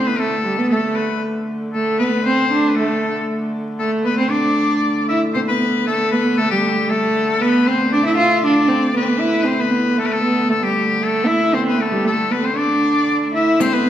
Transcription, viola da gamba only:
0.07 B3
0.19 A3
0.44 G3
0.59 B3
0.72 A3
1.75 A3
2.00 B3
2.26 C4
2.52 D4
2.78 A3
3.80 A3
4.05 B3
4.18 C4
4.31 D4
5.10 E4
5.35 C4
5.48 B3
5.87 A3
6.12 B3
6.38 A3
6.51 G3
6.90 A3
7.41 B3
7.67 C4
7.93 D4
8.05 E4
8.17 F4
8.44 D4
8.68 C4
8.94 B3
9.02 C4
9.07 B3
9.19 E4
9.45 C4
9.60 B3
9.97 A3
10.23 B3
10.49 A3
10.62 G3
11.02 A3
11.27 E4
11.54 B3 C4
11.58 C4
11.66 B3
11.78 A3
11.91 G3
12.05 A3
12.31 B3
12.42 C4
12.56 D4
13.34 E4
13.60 C4
13.73 B3

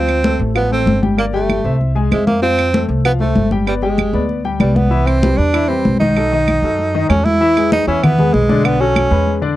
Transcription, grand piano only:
Already playing: F3 F4 F5
0.24 A3 A4 C5
0.55 F3 F4 F5
0.71 A3 A4 C5
1.02 G3 G4 G5
1.17 A#3 A#4 D5
1.33 G3 G4 G5
1.65 C4 C5 E5
1.95 G#3 G#4 G#5
2.11 C4 C5 E5
2.42 F3 F4 F5
2.74 A3 A4 C5
3.05 F3 F4 F5
3.20 A3 A4 C5
3.52 G3 G4 G5
3.66 B3 B4 D5
3.82 G#3 G4 G5
4.14 B3 B4 D5
4.45 G3 G4 G5
4.60 B3 B4 D5
4.90 E3 E4 E5
5.22 G3 G4 B4
5.53 E3 E4 E5
5.69 G3 G4 B4
6.01 D#3 D#4 D#5
6.16 F#3 F#4 A4
6.32 D#3 D#4 D#5
6.64 F#3 F#4 A4
6.94 D#3 D#4 D#5
7.10 F#3 F#4 A4
7.41 E3 E4 E5
7.57 G#3 G#4 B4
7.87 E3 E4 E5
8.19 G#3 G#4 B4
8.49 D3 D4 D5
8.80 F#3 F#4 A4
9.11 G#3 G#4 B4
9.41 D3 D4 D5

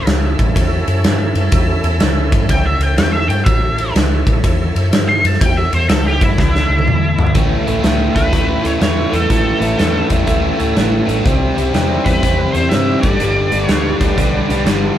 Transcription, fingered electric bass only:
0.07 C#2
0.39 A1
0.56 E2
0.87 F#2
1.05 G2
1.35 F#2
1.52 E2
1.84 E2
2.01 C#2
2.32 G1
2.49 C#2
2.79 C#2
2.97 E2
3.28 G2
3.46 A1
3.95 C#2
4.27 A1
4.44 E2
4.75 F#2
4.92 G2
5.24 F#2
5.41 E2
5.73 E2
5.89 C#2
6.22 G1
6.38 C#2
6.70 C#2
6.87 E2
7.18 G2
7.35 A1
7.67 A1
7.84 C#2
8.16 C#2
8.33 D2
8.64 D2
8.81 E2
9.13 E2
9.30 A1
9.60 A1
9.79 E2
10.11 E2
10.27 D2
10.60 D2
10.76 A1
11.08 A1
11.26 C2
11.57 C2
11.74 E2
12.06 E2
12.23 E2
12.54 E2
12.71 G2
13.04 G1
13.21 G1
13.52 G1
13.69 D2
14.01 D2
14.18 B1
14.49 B1
14.65 G1

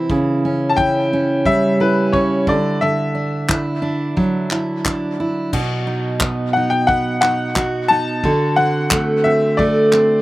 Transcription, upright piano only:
0.70 A5
0.77 G5
1.46 E5
1.81 B4
2.12 C#5
2.49 D5
2.81 E5
6.53 F#5
6.70 G5
6.87 F#5
7.21 F#5
7.88 A5
8.56 F#5
9.24 E5
9.57 D5

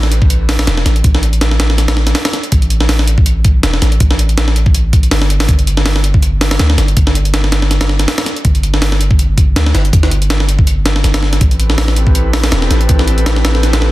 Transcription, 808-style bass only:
Already playing: A1
0.67 E1
0.86 A1
1.04 A1
2.52 A1
3.63 E1
3.82 A1
4.00 A1
5.11 G1
5.49 G1
6.60 D2
6.78 G1
6.97 G1
8.45 G1
9.56 D2
9.75 G1
9.93 G1
11.04 G1
11.41 A1
12.52 E1
12.70 A1
12.89 A1

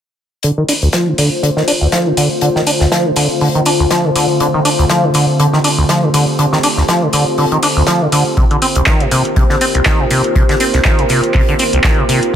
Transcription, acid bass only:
0.44 D3
0.57 D#3
0.68 D4
0.82 D2
0.93 F3
1.07 D3
1.18 D3
1.43 D3
1.57 D#3
1.68 D4
1.81 D2
1.92 F3
2.06 D3
2.17 D3
2.42 D3
2.56 D#3
2.67 D4
2.81 D2
2.92 F3
3.05 D3
3.16 D3
3.41 D3
3.55 D#3
3.66 D4
3.80 D2
3.91 F3
4.05 D3
4.16 D3
4.40 D3
4.54 D#3
4.65 D4
4.79 D2
4.90 F3
5.04 D3
5.15 D3
5.40 D3
5.53 D#3
5.64 D4
5.78 D2
5.89 F3
6.03 D3
6.14 D3
6.39 D3
6.53 D#3
6.64 D4
6.77 D2
6.88 F3
7.02 D3
7.13 D3
7.38 D3
7.52 D#3
7.63 D4
7.76 D2
7.87 F3
8.01 D3
8.12 D3
8.37 C3
8.51 D3
8.62 C4
8.76 C2
8.87 D#3
9.01 C3
9.12 C3
9.36 C3
9.50 D3
9.61 C4
9.75 C2
9.86 D#3
10.00 C3
10.11 C3
10.36 C3
10.49 D3
10.60 C4
10.74 C2
10.85 D#3
10.99 C3
11.10 C3
11.35 C3
11.48 D3
11.59 C4
11.73 C2
11.84 D#3
11.98 C3
12.09 C3

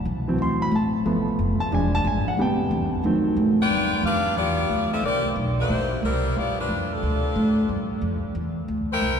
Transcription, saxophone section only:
3.62 F4 B4 D5 G5
4.05 D4 G4 B4 F5
4.38 B3 F4 G4 D5
4.93 C4 F4 A4 E5
5.05 C4 G4 A#4 D5
5.60 A#3 E4 G4 C5
6.05 G3 C4 E4 A#4
6.38 B3 F4 G4 D5
6.60 G3 D4 F4 B4
6.93 G3 D4 F4 A4
8.93 E4 A#4 C5 G5

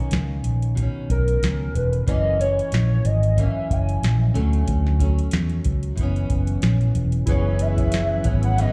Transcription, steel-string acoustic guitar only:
Already playing: D#3 A#3 C#4
0.75 B2 D#3
0.82 C#4
2.07 F#2 E3 A#3 C#4
2.39 E3 A#3 C#4
3.37 F#2 E3 A#3 C#4
4.34 D3 F#3 A3 C#4
4.99 F#3 A3 C#4
5.96 F#2 E3
6.01 B3 C#4
7.28 F#2 E3 B3 C#4
8.24 E3 B3 C#4
8.57 F#2 E3 B3 C#4

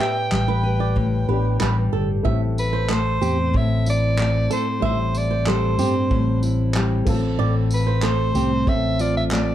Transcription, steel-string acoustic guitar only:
Already playing: A2 B4
0.00 G4
0.31 G3
0.63 B4
0.96 A2
1.29 G4
1.60 G3
2.25 A2
2.90 A3
3.22 C4
3.53 A2
3.86 E4
4.17 A3
4.51 C4
4.83 A2
5.47 G3
5.79 C4
6.11 A2
6.43 E4
6.76 G3
7.07 A2
7.39 A2
8.03 A3
8.35 C4
8.67 A2
9.00 F4
9.32 A3

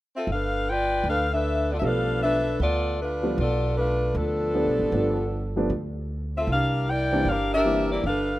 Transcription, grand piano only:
1.81 F3 G3 A3 B3 D4
3.23 F3 G3 A3 B3 D4
4.54 F3 G3 A3 B3 D4
4.93 F3 G3 A3 B3 D4
5.56 F3 G3 A3 B3 D4
7.12 E3 G3 A#3 C4 D4
7.65 E3 G3 A#3 C4 E4

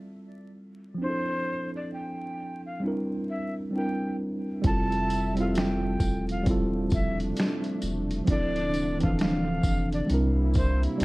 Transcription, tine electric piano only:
Already playing: G3 C4 E4 F4 A4
0.94 F3 C4
1.02 D4 E4
1.09 A4
2.80 G3 C4 D4
2.86 E4 A#4
3.71 G3 C4 D4
3.77 E4 A#4
4.62 G3 C4 E4
4.68 F4 A4
5.34 G3 C4 E4
5.40 F4 A4
6.43 G3 C4 E4
6.49 F4 A4
8.25 F3 C4 D4
8.31 E4 A4
8.98 E3 C4 D4
9.04 E3 F3 A4
10.06 G3 C4 D4
10.12 E4 A#4
10.97 G3 C4 D4

